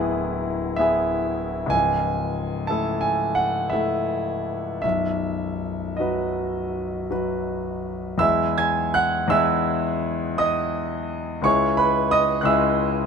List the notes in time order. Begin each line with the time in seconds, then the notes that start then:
Already playing: D1 D2 B3 E4 G#4 B5
0.76 B3 E4 G#4 E5
1.66 C#2 G#5
1.73 C#1
2.67 A3 E4 A4 A5
3.01 G#5
3.35 F#5
3.70 A3 E4 A4 E5
4.82 B0 B1 E5
5.97 F#3 F#4 D#5
6.01 B4
7.11 F#3 F#4 B4
8.18 E2 G#3 E4 G#4 E5 E6
8.58 G#5 G#6
8.94 F#5 F#6
9.28 E2 G#3 E4 G#4 E5 E6
10.38 D#5 D#6
11.42 C#2 G#3 E4 G#4 C#5 C#6
11.77 B4 B5
12.11 D#5 D#6
12.41 C#2 G#3 F#6
12.45 E4 G#4 E5 E6